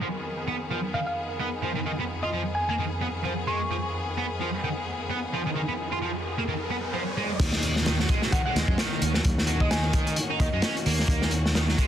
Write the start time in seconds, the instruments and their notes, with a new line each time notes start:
Already playing: string section D#3
0.01 string section F2 B3 G#4, distorted electric guitar F3
0.48 distorted electric guitar B3
0.71 distorted electric guitar F3
0.94 distorted electric guitar D#3, synth pluck F5
1.07 synth pluck F5
1.40 distorted electric guitar B3
1.63 distorted electric guitar F3
1.76 distorted electric guitar D#3
1.86 distorted electric guitar D#3
2.00 distorted electric guitar B3
2.23 distorted electric guitar F4, synth pluck D#5
2.33 distorted electric guitar F3
2.55 synth pluck G#5
2.69 distorted electric guitar A#3, synth pluck G#5
2.79 distorted electric guitar D#3
3.02 distorted electric guitar B3
3.25 distorted electric guitar F3
3.47 distorted electric guitar G#3, synth pluck C#6
3.71 distorted electric guitar F3, riser
4.17 distorted electric guitar B3
4.40 distorted electric guitar F3
4.64 distorted electric guitar D#3
5.10 distorted electric guitar B3
5.33 distorted electric guitar F3
5.46 distorted electric guitar D#3
5.56 distorted electric guitar D#3
5.69 distorted electric guitar B3
5.93 distorted electric guitar F4
6.02 distorted electric guitar F3
6.38 distorted electric guitar A#3
6.48 distorted electric guitar D#3
6.71 distorted electric guitar B3
6.94 distorted electric guitar F3
7.17 distorted electric guitar G#3
7.39 fingered electric bass D#2, string section D#3 A#3 C#4 F#4, kick, closed hi-hat, crash, downlifter
7.53 snare
7.63 closed hi-hat
7.76 snare
7.86 distorted electric guitar D#3, snare, closed hi-hat
7.99 distorted electric guitar F#3, snare
8.09 distorted electric guitar G#3, kick, closed hi-hat
8.22 distorted electric guitar F#3, snare
8.32 distorted electric guitar D#3, synth pluck F#5, kick, closed hi-hat
8.46 distorted electric guitar G#3, synth pluck F#5
8.55 fingered electric bass D#2, snare, closed hi-hat
8.68 fingered electric bass F#2, kick
8.78 distorted electric guitar D#3, snare, closed hi-hat
9.02 fingered electric bass D#2, closed hi-hat
9.14 distorted electric guitar F#3, snare
9.24 fingered electric bass D#2, kick, closed hi-hat
9.38 snare
9.47 distorted electric guitar F#3, closed hi-hat
9.60 distorted electric guitar G#3, synth pluck D#5, kick
9.71 distorted electric guitar D#3, synth pluck G#5, snare, closed hi-hat
9.93 kick, closed hi-hat
10.07 closed hi-hat
10.16 closed hi-hat
10.30 distorted electric guitar D#4
10.40 fingered electric bass D#2, distorted electric guitar D#3, synth pluck D#5, kick, closed hi-hat
10.53 fingered electric bass F#2, distorted electric guitar G#3
10.62 distorted electric guitar C#4, snare, closed hi-hat
10.77 closed hi-hat
10.86 fingered electric bass D#2, distorted electric guitar A#3, open hi-hat
10.99 snare
11.08 fingered electric bass D#2, kick, closed hi-hat
11.22 snare
11.31 closed hi-hat
11.46 snare
11.55 distorted electric guitar D#3, snare, closed hi-hat
11.68 distorted electric guitar F#3, snare
11.78 distorted electric guitar G#3, kick, closed hi-hat